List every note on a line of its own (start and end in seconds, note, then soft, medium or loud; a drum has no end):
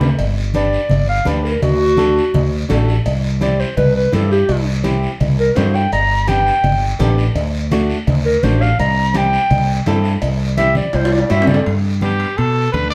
0.00 0.13 D2 loud
0.00 low conga medium
0.00 low timbale medium
0.00 short guiro medium
0.19 0.77 G1 loud
0.19 cowbell loud
0.19 high conga soft
0.19 long guiro medium
0.54 0.80 D4 medium
0.54 0.80 G4 medium
0.54 0.80 B4 medium
0.54 1.08 D5 medium
0.54 cowbell medium
0.54 high conga medium
0.54 short guiro medium
0.73 short guiro medium
0.90 1.20 G1 loud
0.90 cowbell medium
0.90 high conga soft
0.90 low conga medium
0.90 long guiro medium
1.09 1.26 F5 medium
1.25 1.55 D2 loud
1.25 1.51 D4 medium
1.25 1.51 G4 medium
1.25 1.51 B4 medium
1.25 1.44 D5 medium
1.25 cowbell medium
1.25 high conga medium
1.25 short guiro medium
1.44 1.62 A#4 medium
1.44 short guiro medium
1.62 2.20 D2 loud
1.62 2.67 F#4 loud
1.62 cowbell loud
1.62 high conga soft
1.62 low conga medium
1.62 long guiro medium
1.97 2.23 D4 medium
1.97 2.23 F#4 medium
1.97 2.23 A4 medium
1.97 cowbell medium
1.97 high conga medium
1.97 short guiro medium
2.17 short guiro medium
2.34 2.63 D2 loud
2.34 cowbell medium
2.34 high conga soft
2.34 low conga medium
2.34 long guiro medium
2.69 2.99 A1 loud
2.69 2.94 D4 medium
2.69 2.95 F#4 medium
2.69 2.95 A4 loud
2.69 cowbell medium
2.69 high conga medium
2.69 low timbale medium
2.69 short guiro medium
2.88 short guiro medium
3.06 3.63 C2 loud
3.06 cowbell loud
3.06 high conga soft
3.06 long guiro medium
3.41 3.66 C4 medium
3.41 3.66 E4 medium
3.41 3.66 G4 medium
3.41 3.61 D5 loud
3.41 cowbell medium
3.41 high conga medium
3.41 short guiro medium
3.60 3.76 C5 medium
3.60 short guiro medium
3.77 4.06 C2 loud
3.77 3.95 B4 medium
3.77 cowbell medium
3.77 high conga soft
3.77 low conga medium
3.77 long guiro medium
3.96 4.13 B4 medium
4.12 4.42 G2 loud
4.12 4.38 C4 medium
4.12 4.38 E4 medium
4.12 4.38 G4 medium
4.12 4.31 A4 medium
4.12 cowbell medium
4.12 high conga medium
4.12 short guiro medium
4.31 4.66 G4 medium
4.31 short guiro medium
4.49 5.06 C2 loud
4.49 cowbell loud
4.49 high conga soft
4.49 long guiro medium
4.83 5.09 C4 medium
4.83 5.09 E4 medium
4.83 5.10 G4 loud
4.83 cowbell medium
4.83 high conga medium
4.83 short guiro medium
5.03 short guiro medium
5.20 5.49 C2 loud
5.20 cowbell medium
5.20 high conga soft
5.20 low conga medium
5.20 long guiro medium
5.40 5.57 A#4 loud
5.55 5.86 G2 loud
5.55 5.81 C4 medium
5.55 5.81 E4 medium
5.55 5.82 F#4 medium
5.55 5.76 C5 medium
5.55 cowbell medium
5.55 high conga medium
5.55 low timbale medium
5.55 short guiro medium
5.74 5.92 G5 medium
5.74 short guiro medium
5.92 6.50 G1 loud
5.92 6.30 A#5 medium
5.92 cowbell loud
5.92 high conga soft
5.92 long guiro medium
6.27 6.53 B3 medium
6.27 6.53 D4 medium
6.27 6.53 G4 medium
6.27 6.98 G5 medium
6.27 cowbell medium
6.27 high conga medium
6.27 short guiro medium
6.47 short guiro medium
6.64 6.93 G1 loud
6.64 cowbell medium
6.64 high conga soft
6.64 low conga medium
6.64 long guiro medium
6.99 7.29 A1 loud
6.99 7.25 B3 medium
6.99 7.25 D4 medium
6.99 7.25 G4 medium
6.99 cowbell medium
6.99 high conga medium
6.99 low timbale medium
6.99 short guiro medium
7.18 short guiro medium
7.35 7.93 D2 loud
7.35 cowbell loud
7.35 high conga soft
7.35 long guiro medium
7.71 7.97 A3 medium
7.71 7.97 D4 medium
7.71 7.97 F#4 medium
7.71 cowbell medium
7.71 high conga medium
7.71 short guiro medium
7.90 short guiro medium
8.07 8.36 D2 loud
8.07 cowbell medium
8.07 high conga soft
8.07 low conga medium
8.07 long guiro medium
8.25 8.44 A#4 loud
8.43 8.72 A1 loud
8.43 8.69 A3 medium
8.43 8.69 D4 medium
8.43 8.69 F#4 medium
8.43 8.63 C5 medium
8.43 cowbell medium
8.43 high conga medium
8.43 short guiro medium
8.62 8.79 F5 medium
8.62 short guiro medium
8.79 9.37 C2 loud
8.79 9.18 A#5 medium
8.79 cowbell loud
8.79 high conga soft
8.79 long guiro medium
9.14 9.40 C4 medium
9.14 9.40 E4 medium
9.14 9.40 G4 medium
9.14 9.86 G5 loud
9.14 cowbell medium
9.14 high conga medium
9.14 short guiro medium
9.33 short guiro medium
9.50 9.80 C2 loud
9.50 cowbell medium
9.50 high conga soft
9.50 low conga medium
9.50 long guiro medium
9.86 10.16 G2 loud
9.86 10.12 C4 medium
9.86 10.12 E4 medium
9.86 10.12 A4 medium
9.86 cowbell medium
9.86 high conga medium
9.86 low timbale medium
9.86 short guiro medium
10.04 short guiro medium
10.22 10.80 C2 loud
10.22 cowbell loud
10.22 high conga soft
10.22 long guiro medium
10.57 10.83 C4 medium
10.57 10.84 E4 medium
10.57 10.84 G4 medium
10.57 10.76 E5 medium
10.57 cowbell medium
10.57 high conga medium
10.57 short guiro medium
10.75 10.96 D5 medium
10.75 high conga medium
10.75 short guiro medium
10.93 11.23 C2 loud
10.93 11.14 C5 loud
10.93 cowbell medium
10.93 high timbale medium
10.93 long guiro medium
11.05 high timbale medium
11.13 11.33 D5 medium
11.18 high timbale medium
11.29 11.60 G2 loud
11.29 11.55 C4 medium
11.29 11.55 E4 medium
11.29 11.56 F#4 medium
11.29 11.49 E5 medium
11.29 cowbell medium
11.29 short guiro medium
11.42 low timbale medium
11.47 11.65 D5 medium
11.47 low conga loud
11.47 short guiro medium
11.54 low timbale loud
11.66 12.24 G2 medium
11.66 high timbale medium
11.66 long guiro medium
12.01 12.27 B3 medium
12.01 12.27 D4 medium
12.01 12.28 G4 medium
12.01 12.39 G4 medium
12.01 high conga medium
12.01 high timbale medium
12.01 short guiro medium
12.20 high timbale medium
12.20 short guiro medium
12.37 12.67 B2 medium
12.37 12.72 A4 medium
12.37 high timbale medium
12.37 long guiro medium
12.72 12.94 D2 medium
12.72 12.94 B3 medium
12.72 12.94 D4 medium
12.72 12.94 A4 medium
12.72 12.90 B4 medium
12.72 high conga medium
12.72 high timbale medium
12.72 short guiro medium
12.90 12.94 D5 medium